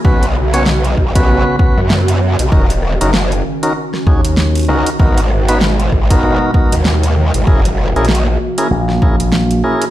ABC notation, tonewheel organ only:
X:1
M:4/4
L:1/16
Q:"Swing 16ths" 1/4=97
K:G#m
V:1 name="Tonewheel organ"
[B,CFB] z2 [B,CFc] z3 [B,CFB]3 [B,CFB] z4 z | [CDFA] z2 [CDFA] z3 [CDFA] z2 [CDFG] z3 [CDFA] z | [B,DFA] z2 [B,DFB] z3 [B,DFA]3 [B,DFA] z4 z | [CEGA] z2 [CEGA] z3 [CEGA] z2 [CEGA] z3 [CEGA] z |]